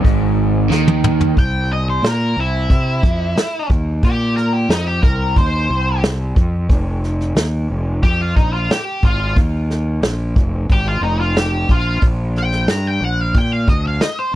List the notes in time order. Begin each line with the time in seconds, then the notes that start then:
0.04 G#1 G#2, kick, open hi-hat
0.70 D#2 D#3, snare
0.88 high tom
1.04 mid tom
1.21 floor tom
1.37 C2 G5, kick, open hi-hat
1.73 D#5
1.89 C5
2.02 A#2, snare, open hi-hat
2.07 A#4
2.36 C2 E4
2.70 C3, kick, open hi-hat
3.03 F2, kick
3.36 muted fingered electric bass stroke, snare, open hi-hat
3.69 D#2, kick
4.03 A#2 G4, kick, open hi-hat
4.37 A#4, snare
4.53 G4
4.69 F2 D#4, snare, open hi-hat
4.87 G4
5.02 C2 A#4, kick
5.36 D#2 C5, kick, open hi-hat
5.69 C2
6.03 snare, open hi-hat
6.36 F2, kick
6.69 F1, kick, open hi-hat
7.04 snare
7.21 snare
7.35 D#2, snare, open hi-hat
7.70 F1
8.03 F2 G4, kick, open hi-hat
8.21 F4
8.36 A#1 D#4, kick
8.53 F4
8.70 G4, muted fingered electric bass stroke, snare, open hi-hat
9.03 G#1 F4, kick
9.36 D#2, kick, open hi-hat
9.70 snare
10.02 A#1, snare, open hi-hat
10.36 F1, kick
10.69 G#1 G4, kick, open hi-hat
10.88 F4
11.01 F1 D#4
11.20 F4
11.36 G4, snare, open hi-hat
11.69 A#1 F4, kick
12.01 A#1, kick, open hi-hat
12.36 G5, snare
12.52 snare
12.67 G2 A#5, snare, open hi-hat
12.87 G5
13.01 A#1
13.05 F#5
13.21 F5
13.34 A#2 G5, kick, open hi-hat
13.53 F5
13.67 D2 D#5, kick
13.87 F5
14.00 D#5, muted fingered electric bass stroke, snare, open hi-hat
14.19 C5